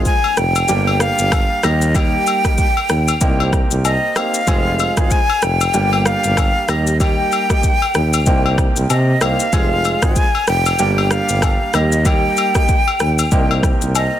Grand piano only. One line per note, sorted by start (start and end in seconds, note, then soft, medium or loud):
0.00 0.10 G#3 medium
0.00 0.11 C4 medium
0.00 0.11 F4 medium
0.00 0.11 G#4 medium
0.68 1.57 G3 medium
0.68 1.57 A#3 medium
0.68 1.57 D4 medium
0.68 1.57 G4 loud
1.63 1.85 G3 medium
1.63 1.85 A#3 medium
1.63 1.86 D#4 medium
1.63 1.86 G4 medium
1.95 2.40 G3 medium
1.95 2.40 A#3 medium
1.95 2.41 D#4 medium
1.95 2.41 G4 loud
2.45 2.63 G3 medium
2.45 2.63 A#3 medium
2.45 2.63 D#4 medium
2.45 2.63 G4 medium
3.21 4.09 A#3 medium
3.21 4.10 C4 medium
3.21 4.10 D#4 medium
3.21 4.10 G4 loud
4.16 4.38 A#3 medium
4.16 4.38 C4 medium
4.16 4.38 D#4 medium
4.16 4.38 G4 medium
4.47 4.93 G#3 medium
4.47 4.93 C4 medium
4.47 4.93 F4 medium
4.47 4.93 G#4 loud
4.97 5.16 G#3 medium
4.97 5.16 C4 medium
4.97 5.16 F4 medium
4.97 5.16 G#4 medium
5.74 6.62 G3 medium
5.74 6.62 A#3 medium
5.74 6.62 D4 medium
5.74 6.62 G4 loud
6.68 6.91 G3 medium
6.68 6.91 A#3 medium
6.68 6.91 D#4 medium
6.68 6.91 G4 medium
7.00 7.46 G3 medium
7.00 7.46 A#3 medium
7.00 7.46 D#4 medium
7.00 7.46 G4 loud
7.50 7.68 G3 medium
7.50 7.68 A#3 medium
7.50 7.69 D#4 medium
7.50 7.69 G4 medium
8.26 9.15 A#3 medium
8.26 9.15 C4 medium
8.26 9.15 D#4 medium
8.26 9.15 G4 loud
9.21 9.43 A#3 medium
9.21 9.43 C4 medium
9.21 9.43 D#4 medium
9.21 9.43 G4 medium
9.53 9.98 G#3 loud
9.53 9.98 C4 medium
9.53 9.98 F4 medium
9.53 9.99 G#4 loud
10.03 10.21 G#3 medium
10.03 10.21 C4 medium
10.03 10.21 F4 medium
10.03 10.21 G#4 medium
10.79 11.67 G3 medium
10.79 11.68 A#3 medium
10.79 11.68 D4 medium
10.79 11.68 G4 loud
11.74 11.96 G3 medium
11.74 11.96 A#3 medium
11.74 11.96 D#4 medium
11.74 11.96 G4 medium
12.05 12.51 G3 loud
12.05 12.51 A#3 medium
12.05 12.51 D#4 medium
12.05 12.51 G4 loud
12.55 12.74 G3 medium
12.55 12.74 A#3 medium
12.55 12.74 D#4 medium
12.55 12.74 G4 medium
13.32 14.20 A#3 medium
13.32 14.20 C4 medium
13.32 14.20 D#4 medium
13.32 14.20 G4 loud